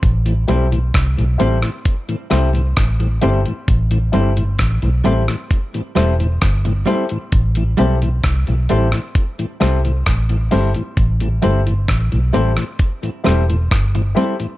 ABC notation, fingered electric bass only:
X:1
M:4/4
L:1/16
Q:1/4=66
K:Am
V:1 name="Fingered electric bass" clef=bass
A,,,2 B,,,2 C,, B,,, A,,, z3 C,,2 A,,,2 G,,, z | A,,,2 G,,,2 A,,, B,,, A,,, z3 E,,,2 G,,,2 z2 | A,,,2 B,,,2 C,, B,,, A,,, z3 C,,2 A,,,2 G,,, z | A,,,2 G,,,2 A,,, B,,, A,,, z3 E,,,2 G,,,2 z2 |]